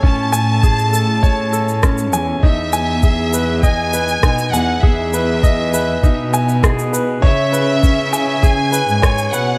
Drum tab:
SH |--x-xxx-x-xxxxx-|--x-x-x-x-xxxxx-|--x-x-x-x-xxxxx-|--x-x-x-x-xxxxx-|
SD |------------r---|------------r---|------------r---|------------r---|
BD |o---o---o---o---|o---o---o---o---|o---o---o---o---|o---o---o---o---|